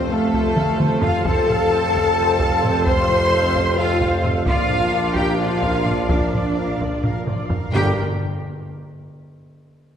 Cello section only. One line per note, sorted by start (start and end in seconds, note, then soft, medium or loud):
0.00 0.11 C4 loud
0.11 1.01 A3 loud
1.03 1.26 F4 loud
1.26 2.83 A4 loud
2.86 3.76 C5 loud
3.78 4.23 F4 loud
4.47 5.12 F4 loud
5.15 5.39 G4 loud
5.39 6.08 F4 loud
6.08 7.03 D4 medium
7.73 7.99 G4 loud